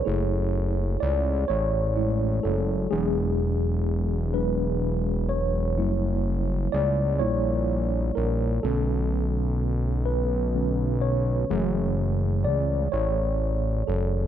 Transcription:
<<
  \new Staff \with { instrumentName = "Tine electric piano" } { \time 6/8 \key fis \minor \tempo 4. = 42 << { cis''4 d''8 cis''4 a'8 | gis'4. b'4 cis''8~ | cis''4 d''8 cis''4 ais'8 | a'4. b'4 cis''8~ |
cis''4 d''8 cis''4 a'8 | } \\ { a'16 r2 r8. | r2. | r2. | r2. |
r2. | } >> }
  \new Staff \with { instrumentName = "Tine electric piano" } { \time 6/8 \key fis \minor <a e' gis'>2 <gis a e'>8 r8 | <fis gis d'>4. <fis gis d'>8 r4 | <g ais e'>4. <g ais e'>8 r4 | <d a cis'>4. r8 <d a cis'>8 r8 |
<e a gis'>2. | }
  \new Staff \with { instrumentName = "Analog synth bass" } { \clef bass \time 6/8 \key fis \minor fis,,4 cis,8 a,,4 fis,,8 | e,,2. | fis,,4 cis,8 ais,,4 ais,,8 | b,,2. |
fis,,4 cis,8 a,,4 fis,,8 | }
>>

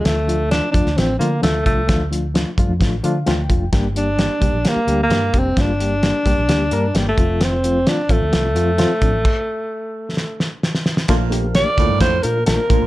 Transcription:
<<
  \new Staff \with { instrumentName = "Alto saxophone" } { \time 4/4 \key g \minor \tempo 4 = 130 a4 d'8 d'8 c'8 bes8 a8 a8~ | a8 r2. r8 | r8 d'4. bes8. bes8. c'8 | d'2. g16 a8. |
c'4 d'8 a2~ a8~ | a2. r4 | r4 d''4 c''8 bes'8 bes'4 | }
  \new Staff \with { instrumentName = "Reed electric piano" } { \time 4/4 \key g \minor r1 | r2 r8 f''8 g''4 | r1 | r1 |
r1 | r1 | r1 | }
  \new Staff \with { instrumentName = "Reed electric piano" } { \time 4/4 \key g \minor <f a d' f'>8 <f a d' f'>8 <f a d' f'>8 <f a d' f'>8 <f a d' f'>8 <f a d' f'>8 <f a d' f'>8 <f a d' f'>8 | <f a d' f'>8 <f a d' f'>8 <f a d' f'>8 <f a d' f'>8 <f a d' f'>8 <f a d' f'>8 <f a d' f'>8 <f a d' f'>8 | <g bes d' g'>8 <g bes d' g'>8 <g bes d' g'>8 <g bes d' g'>8 <g bes d' g'>8 <g bes d' g'>8 <g bes d' g'>8 <g bes d' g'>8 | <g bes d' f'>8 <g bes d' g'>8 <g bes d' g'>8 <g bes d' g'>8 <g bes d' g'>8 <g bes d' bes'>8 <g bes d' g'>8 <f a c' f'>8~ |
<f a c' f'>8 <f a c' f'>8 <f a c' f'>8 <f a c' f'>8 <f a c' f'>8 <f a c' f'>8 <f a c' f'>8 <f a c' d'>8 | r1 | <a bes d' f'>8 <a bes d' g'>8 <a bes d' g'>8 <a bes d' f'>8 <a bes d' f'>8 <a bes d' f'>8 <a bes d' f'>8 <a bes d' f'>8 | }
  \new Staff \with { instrumentName = "Tonewheel organ" } { \time 4/4 \key g \minor r1 | r1 | r1 | r1 |
r1 | r1 | <f bes d' bes'>1 | }
  \new Staff \with { instrumentName = "Baritone saxophone" } { \clef bass \time 4/4 \key g \minor r1 | r1 | r1 | r1 |
r1 | r1 | bes,8. r8. a,8 a,8 r4 bes,8 | }
  \new Staff \with { instrumentName = "Fingered electric bass" } { \clef bass \time 4/4 \key g \minor d,4~ d,16 r16 f,16 d,16 a,,8 d8 d,8 c,8 | d,4~ d,16 r16 g,16 f,16 a,,8 d8 d,8 f,,8 | g,,4~ g,,16 r16 c,16 bes,,16 r8 d,8 g,8 f,,8 | g,,4~ g,,16 r16 c,16 bes,,16 d,8 g,8 g,,8 f,,8~ |
f,,4~ f,,16 r16 a,,16 d,16 c,8 f,8. r16 a,16 a,,16 | r1 | bes,,4~ bes,,16 r16 d,16 g,16 f,8 bes,8 bes,,16 r16 a,,16 bes,,16 | }
  \new DrumStaff \with { instrumentName = "Drums" } \drummode { \time 4/4 <hh sn>8 hh8 <hh sn>8 <hh bd>16 sn16 <hh sn>8 hh8 <hh sn>8 <hh bd>8 | <hh bd sn>8 hh8 <hh sn>8 <hh bd>8 <hh bd sn>8 hh8 <hh sn>8 <hh bd>8 | <hh bd sn>8 hh8 <hh sn>8 <hh bd>8 <hh sn>8 hh8 <hh sn>8 <hh bd>8 | <hh bd sn>8 hh8 <hh sn>8 <hh bd>8 <hh sn>8 hh8 <hh sn>8 <hh bd>8 |
<hh sn>8 hh8 <hh sn>8 <hh bd>8 <hh sn>8 hh8 <hh sn>8 <hh bd>8 | <cymc bd>4 r4 sn8 sn8 sn16 sn16 sn16 sn16 | <hh bd sn>8 hh8 <hh sn>8 <hh bd>8 <hh bd sn>8 hh8 <hh sn>8 <hh bd>8 | }
>>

